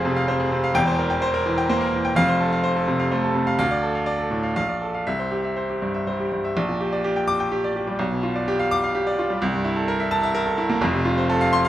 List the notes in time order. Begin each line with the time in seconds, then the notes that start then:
Already playing: F1 F2 G#4 C5 F5
0.05 C3
0.16 F5
0.28 C4 C5
0.40 G#4
0.52 C3
0.64 F5
0.74 E1 E2 G5
0.87 C5
0.99 A#4
1.10 G5
1.22 C5
1.34 A#4
1.46 E3
1.58 G5
1.69 A#3 C5
1.81 A#4
1.93 E3
2.05 G5
2.15 F1 F2 F5
2.28 C5
2.41 A4
2.53 F5
2.64 C5
2.76 A4
2.88 C3
3.00 F5
3.12 A3 C5
3.24 A4
3.35 C3
3.47 F5
3.59 D2 F5
3.71 D5
3.83 A4
3.95 F5
4.06 D5
4.18 A4
4.31 A2
4.43 F5
4.56 A#1 F5
4.69 D5
4.81 A4
4.94 F5
5.07 C2 E5
5.19 C5
5.31 G4
5.44 E5
5.56 C5
5.70 G4
5.82 G2
5.94 E5
6.07 G3 C5
6.20 G4
6.32 G2
6.45 E5
6.57 A#1
6.69 A#2
6.81 G4
6.92 D5
7.04 G4
7.16 G5
7.28 D6
7.40 G5
7.52 G4
7.64 D5
7.76 G4
7.87 G3
7.99 B1
8.12 B2
8.23 F4
8.36 D5
8.48 G4
8.59 F5
8.71 D6
8.84 F5
8.95 G4
9.07 D5
9.19 F4
9.30 G3
9.42 C2
9.54 G2
9.65 E4
9.76 A4
9.88 A#4
10.00 E5
10.11 A5
10.23 E5
10.35 A#4
10.46 A4
10.58 E4
10.70 A#3
10.81 F1 F2
10.93 C3
11.05 F4
11.18 C5
11.29 A4
11.41 F5
11.53 C6
11.65 F5